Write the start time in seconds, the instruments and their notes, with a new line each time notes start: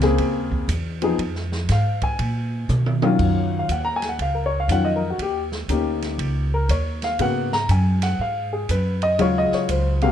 Already playing: upright bass C#2
0.01 grand piano C#3 A#3 C4 G#4, snare, ride
0.18 upright bass D#2, ride
0.52 kick
0.68 upright bass E2, hi-hat pedal, ride
1.02 grand piano F3 B3 D#4 G#4, ride
1.18 upright bass F2, ride
1.36 snare
1.52 snare
1.69 upright bass G#2, grand piano F5, snare, hi-hat pedal, ride
2.02 grand piano G#5, kick, ride
2.19 upright bass A#2, ride
2.69 upright bass B2, hi-hat pedal, mid tom
2.86 mid tom
3.02 grand piano D#3 F#3 C#4 F4, mid tom
3.19 upright bass F#2, kick, crash
3.59 grand piano F5
3.69 upright bass D#2, grand piano F#5, hi-hat pedal, ride
3.85 grand piano A#5
3.96 grand piano G#5
4.02 snare, ride
4.09 grand piano F#5
4.19 upright bass C#2, grand piano F5, ride
4.35 grand piano A#4
4.46 grand piano C#5
4.60 grand piano F5
4.68 upright bass F2, grand piano D#3 F#3 C#4 F#5, hi-hat pedal, ride
4.72 grand piano F4
4.85 grand piano D#5
4.96 grand piano A#4
5.10 grand piano F#4
5.18 upright bass D#2, grand piano G4, ride
5.52 snare
5.68 upright bass D2, grand piano A#3 C#4 D#4 G4, hi-hat pedal, ride
6.02 snare, ride
6.18 upright bass C#2, ride
6.54 grand piano A#4
6.69 upright bass D#2, grand piano C#5, hi-hat pedal, ride
7.02 grand piano F5, snare, ride
7.19 upright bass G#2, grand piano C#3 A#3 B3 F#4 F#5, ride
7.53 grand piano A#5, snare
7.69 upright bass F#2, grand piano G#5, hi-hat pedal, ride
8.02 grand piano F#5, snare, ride
8.19 upright bass G#2, grand piano F5
8.53 grand piano G#4
8.69 upright bass F#2, grand piano B4, hi-hat pedal, ride
9.02 grand piano D#5, ride
9.19 upright bass D#2, grand piano C#3 F#3 G#3 F4 C#5, ride
9.38 grand piano D#5
9.52 grand piano C#5, muted upright bass stroke, snare
9.69 upright bass C#2, grand piano C5, hi-hat pedal, ride
10.01 grand piano C3 G#3 A#3 F#4 F5, ride